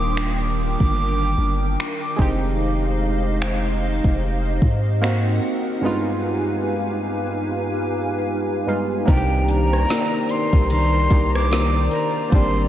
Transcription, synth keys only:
0.00 2.14 G3 medium
0.00 2.14 A#3 medium
0.00 2.15 D4 medium
0.00 2.16 F4 medium
2.16 4.97 G#3 medium
2.16 4.98 C4 medium
2.16 4.99 D#4 medium
2.22 5.00 G4 medium
5.02 5.83 A#3 medium
5.02 5.84 C4 medium
5.02 5.84 D#4 medium
5.02 5.84 F#4 medium
5.81 8.62 G2 medium
5.81 8.63 G#3 medium
5.81 8.63 B3 medium
5.85 8.64 D#4 medium
5.85 8.65 F4 medium
8.66 9.07 G2 medium
8.66 9.08 G#3 medium
8.66 9.08 B3 medium
8.66 9.08 D#4 medium
8.66 9.09 F4 medium
9.05 11.05 A#3 medium
9.05 11.06 D4 medium
9.05 11.07 D#4 medium
9.11 9.17 F4 medium
9.17 11.11 G4 medium
11.10 12.29 A#3 soft
11.10 12.32 D4 soft
11.10 12.33 D#4 soft
11.10 12.33 G4 medium
12.30 12.68 A#3 medium
12.30 12.68 C4 medium
12.30 12.68 D4 medium
12.35 12.68 G3 medium

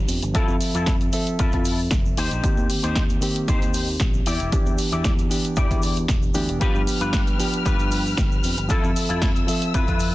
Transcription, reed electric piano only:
0.00 0.31 F3 medium
0.00 0.32 B3 medium
0.00 0.32 D4 medium
0.00 0.32 G4 medium
0.33 1.10 F3 medium
0.33 1.10 C4 medium
0.33 1.11 A4 loud
0.33 1.10 E5 medium
1.12 2.16 F3 medium
1.12 2.16 C4 medium
1.12 2.17 A4 medium
1.12 2.16 E5 medium
2.43 3.19 D#3 medium
2.43 3.19 A#3 medium
2.43 3.19 C4 medium
2.43 3.19 G4 medium
3.21 4.24 D#3 medium
3.21 4.25 A#3 medium
3.21 4.25 C4 medium
3.21 4.25 G4 medium
4.51 5.27 E3 medium
4.51 5.28 B3 medium
4.51 5.28 D4 medium
4.51 5.28 G4 medium
5.29 6.32 E3 medium
5.29 6.32 B3 medium
5.29 6.33 D4 medium
5.29 6.33 G4 medium
6.34 6.58 E3 medium
6.34 6.58 B3 medium
6.34 6.58 D4 medium
6.34 6.58 G4 loud
6.60 7.36 F3 medium
6.60 7.36 B3 medium
6.60 7.37 D4 medium
6.60 7.37 G4 medium
7.38 8.66 F3 medium
7.38 8.67 B3 medium
7.38 8.67 D4 medium
7.38 8.67 G4 medium
8.69 9.45 F3 medium
8.69 9.45 C4 medium
8.69 9.46 A4 medium
8.69 9.45 E5 medium
9.47 10.15 F3 medium
9.47 10.15 C4 medium
9.47 10.15 A4 medium
9.47 10.15 E5 medium

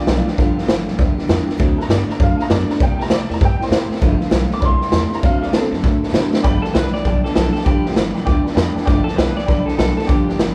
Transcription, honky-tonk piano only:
0.00 0.34 A3 medium
0.00 0.34 B3 medium
0.00 0.26 F4 medium
0.00 0.27 D5 medium
0.39 0.85 A3 medium
0.39 0.86 B3 medium
0.39 0.86 F4 medium
1.59 1.82 F#3 medium
1.59 1.82 C4 medium
1.59 1.82 E4 medium
1.82 1.91 A#5 loud
1.91 2.09 D5 medium
2.12 2.21 A#5 medium
2.23 2.40 F5 loud
2.42 2.51 A#5 loud
2.52 2.70 D5 loud
2.71 2.81 A#5 medium
2.80 3.03 A#3 medium
2.80 3.03 D4 medium
2.80 3.04 E4 medium
2.80 3.01 G5 loud
3.02 3.12 A#5 loud
3.14 3.31 D5 loud
3.34 3.43 A#5 medium
3.45 3.62 G5 loud
3.63 3.91 C5 medium
4.01 4.59 A3 medium
4.01 4.59 B3 medium
4.01 4.59 F4 medium
4.54 4.63 D6 loud
4.61 5.20 A#3 medium
4.61 5.21 D4 medium
4.61 5.21 E4 medium
4.61 4.63 B5 medium
4.65 4.93 C6 loud
4.96 5.13 C6 medium
5.15 5.24 A#5 medium
5.23 5.45 F#3 medium
5.23 5.46 C4 medium
5.23 5.46 E4 medium
5.23 5.43 F5 loud
5.45 5.54 D5 medium
5.56 5.73 C4 medium
5.56 5.74 A4 loud
6.43 6.55 D5 loud
6.43 6.56 G5 loud
6.43 6.56 B5 loud
6.63 6.70 D5 medium
6.63 6.70 G5 medium
6.63 6.71 A5 medium
6.75 6.87 D5 medium
6.75 6.87 G5 medium
6.75 6.88 B5 medium
6.93 7.00 D5 medium
6.93 7.01 G5 medium
6.93 7.01 B5 medium
7.06 7.17 D5 loud
7.06 7.18 G5 loud
7.06 7.18 A5 loud
7.24 7.31 D5 medium
7.24 7.31 G5 medium
7.24 7.32 D6 medium
7.35 7.47 D5 medium
7.35 7.47 G5 medium
7.35 7.48 A5 medium
7.55 7.62 D5 medium
7.55 7.62 G5 medium
7.55 7.63 D6 medium
7.66 7.77 D5 loud
7.66 7.78 G5 medium
7.66 7.78 B5 loud
7.85 7.92 D5 medium
7.85 7.92 G5 medium
7.85 7.93 B5 medium
7.95 8.07 D5 medium
7.95 8.08 G5 medium
7.95 8.08 B5 medium
8.14 8.21 D5 medium
8.14 8.22 G5 medium
8.14 8.22 B5 loud
8.25 8.38 D5 loud
8.25 8.38 G5 loud
8.25 8.38 D6 loud
8.43 8.51 D5 medium
8.43 8.52 G5 medium
8.43 8.55 A5 medium
8.43 8.52 B5 medium
8.54 8.67 D5 medium
8.54 8.74 G5 medium
8.54 8.68 B5 loud
8.74 8.82 D5 loud
8.74 8.83 G5 medium
8.74 8.83 A5 medium
8.85 8.98 D5 loud
8.85 8.98 G5 loud
8.85 8.99 D6 loud
9.05 9.12 D5 medium
9.05 9.13 G5 medium
9.05 9.14 A5 medium
9.16 9.29 D5 medium
9.16 9.29 G5 medium
9.16 9.30 B5 medium
9.35 9.43 D5 medium
9.35 9.43 G5 medium
9.35 9.44 B5 medium
9.46 9.59 D5 loud
9.46 9.59 G5 medium
9.46 9.60 B5 loud
9.67 9.74 D5 medium
9.67 9.74 G5 medium
9.76 9.89 D5 medium
9.76 9.90 G5 medium
9.76 9.90 B5 medium
9.95 10.03 D5 medium
9.95 10.04 G5 medium
9.95 10.04 B5 medium
10.06 10.19 D5 medium
10.06 10.20 G5 medium
10.06 10.20 D6 loud
10.27 10.35 D5 medium
10.27 10.35 G5 medium
10.27 10.36 A5 medium
10.39 10.51 D5 medium
10.39 10.51 G5 medium
10.39 10.52 B5 medium

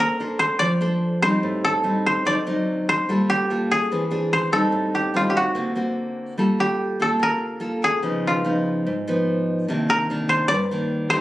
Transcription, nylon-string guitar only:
0.00 0.57 A#3 medium
0.00 0.15 D4 soft
0.00 0.15 A4 medium
0.00 0.16 C5 medium
0.20 0.60 D4 soft
0.20 0.60 A4 soft
0.20 0.61 C5 medium
0.61 1.41 F3 medium
0.81 1.19 D4 medium
0.81 1.19 A4 soft
0.81 1.19 C5 medium
1.22 1.81 G3 soft
1.22 1.81 C4 medium
1.22 1.81 D#4 medium
1.43 2.23 A2 medium
1.84 2.23 G3 soft
1.84 2.24 C4 medium
1.84 2.23 D#4 medium
2.25 3.06 D3 medium
2.25 2.37 F#3 soft
2.25 2.38 C4 medium
2.25 2.38 D#4 medium
2.47 3.05 F#3 medium
2.47 3.05 C4 medium
2.47 3.05 D#4 medium
3.09 3.89 G3 medium
3.09 3.46 A#3 medium
3.09 3.47 F4 medium
3.09 3.46 A4 medium
3.50 3.89 A#3 medium
3.50 3.89 F4 soft
3.50 3.89 A4 medium
3.91 4.52 E3 medium
3.91 4.03 C4 medium
3.91 4.03 D4 medium
3.91 4.03 G#4 medium
4.11 4.49 C4 soft
4.11 4.49 D4 medium
4.11 4.49 G#4 medium
4.52 5.11 G3 medium
4.52 5.11 C4 medium
4.52 5.11 D#4 medium
4.72 5.53 A2 medium
5.14 5.53 G3 soft
5.14 5.54 C4 medium
5.14 5.54 D#4 medium
5.55 6.35 D3 medium
5.55 5.72 A#3 medium
5.55 5.73 C4 soft
5.55 5.73 F#4 medium
5.75 6.34 A#3 medium
5.75 6.34 C4 medium
5.75 6.35 F#4 medium
6.38 7.18 G3 medium
6.38 6.97 A#3 soft
6.38 6.97 F4 medium
6.38 6.97 A4 medium
7.00 7.58 A#3 medium
7.00 7.58 F4 medium
7.20 8.00 D3 medium
7.60 7.99 A#3 medium
7.60 7.99 F4 medium
7.60 7.99 A4 medium
8.02 8.83 C#3 medium
8.02 8.41 F3 medium
8.02 8.41 B3 soft
8.02 8.41 D#4 medium
8.44 8.85 F3 medium
8.44 8.86 B3 soft
8.44 8.86 D#4 medium
8.86 9.66 G#2 medium
9.08 9.65 F3 medium
9.08 9.66 B3 medium
9.08 9.66 D#4 medium
9.68 10.49 C3 medium
9.68 10.06 D#3 soft
9.68 10.07 A#3 medium
9.68 10.07 D4 medium
10.10 10.51 D#3 medium
10.10 10.51 A#3 medium
10.10 10.51 D4 medium
10.50 11.21 G2 medium
10.71 11.09 D#3 medium
10.71 11.09 A#3 medium
10.71 11.10 D4 medium
11.13 11.21 A3 medium
11.13 11.21 D#4 medium
11.13 11.21 G4 medium

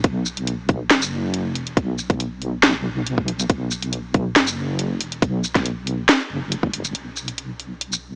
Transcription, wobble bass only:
0.04 0.89 B1 loud
0.91 1.51 F#1 loud
1.51 1.75 F1 loud
1.77 2.62 B1 medium
2.63 3.48 B1 loud
3.50 4.34 B1 loud
4.36 4.96 F#1 loud
4.96 5.21 F1 loud
5.22 6.07 B1 loud
6.30 6.93 F#1 loud
6.95 8.15 B1 medium

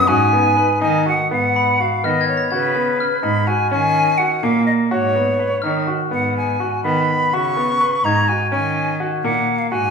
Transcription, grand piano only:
0.08 0.29 F#4 medium
0.33 0.54 B3 medium
0.57 0.78 B4 medium
0.82 1.03 D#4 medium
1.06 1.28 F#4 medium
1.31 1.74 B3 medium
1.80 2.01 F#4 medium
2.04 2.46 B3 medium
2.52 2.73 F#4 medium
2.75 2.97 B3 medium
2.99 3.20 B4 medium
3.23 3.44 D#4 medium
3.47 3.68 F#4 medium
3.71 4.13 C#4 medium
4.19 4.40 F#4 medium
4.43 4.85 A#3 medium
4.91 5.12 F#4 medium
5.15 5.36 B3 medium
5.39 5.60 B4 medium
5.63 5.85 D#4 medium
5.87 6.09 F#4 medium
6.11 6.54 B3 medium
6.60 6.81 F#4 medium
6.85 7.27 B3 medium
7.33 7.54 F#4 medium
7.57 7.78 B3 medium
7.81 8.02 B4 medium
8.05 8.26 D#4 medium
8.29 8.50 F#4 soft
8.52 8.94 C#4 medium
9.00 9.21 F#4 medium
9.24 9.66 A#3 medium
9.72 9.90 F#4 medium

